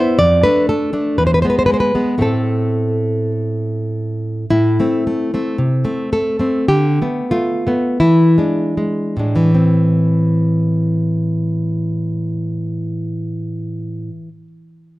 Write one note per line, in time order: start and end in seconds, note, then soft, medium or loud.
0.00 0.17 B3 soft
0.00 0.17 E4 soft
0.00 0.19 C5 medium
0.19 0.43 F2 medium
0.19 0.43 D5 medium
0.43 0.69 A3 soft
0.43 0.92 D4 soft
0.43 0.68 B4 medium
0.69 0.92 A3 soft
0.69 1.17 A4 medium
0.93 1.16 A3 soft
0.93 1.16 D4 soft
1.18 1.44 E2 soft
1.18 1.26 B4 medium
1.27 1.34 C5 medium
1.34 1.42 B4 medium
1.42 1.67 G#3 soft
1.42 1.94 B3 soft
1.42 1.49 C5 medium
1.50 1.58 B4 medium
1.59 1.66 C5 medium
1.66 1.94 G#3 soft
1.66 1.73 B4 medium
1.74 1.80 C5 medium
1.80 2.20 B4 medium
1.95 2.18 G#3 soft
1.95 2.20 B3 soft
2.18 4.44 A2 soft
2.18 4.45 A3 soft
2.18 4.46 C4 soft
2.22 3.31 A4 medium
4.50 4.77 A2 soft
4.50 6.06 E4 medium
4.80 5.06 A3 soft
4.80 5.33 C4 soft
5.07 5.33 A3 soft
5.34 5.56 A3 soft
5.34 5.56 C4 soft
5.58 5.83 C3 soft
5.85 6.11 A3 soft
5.85 6.39 C4 soft
6.13 6.38 A3 soft
6.13 6.67 A4 medium
6.39 6.66 A3 soft
6.39 6.66 C4 soft
6.68 6.98 D3 soft
6.68 7.29 G4 medium
7.02 7.31 A3 soft
7.02 7.66 B3 soft
7.31 7.65 A3 soft
7.31 7.97 F4 medium
7.67 7.97 A3 soft
7.67 7.98 B3 soft
8.00 8.36 E3 soft
8.00 9.50 E4 medium
8.38 8.76 G#3 soft
8.38 9.18 D4 soft
8.77 9.18 G#3 soft
9.17 14.09 A2 soft
9.17 9.51 G#3 soft
9.17 9.51 D4 soft
9.36 14.28 E3 soft
9.55 14.47 C4 soft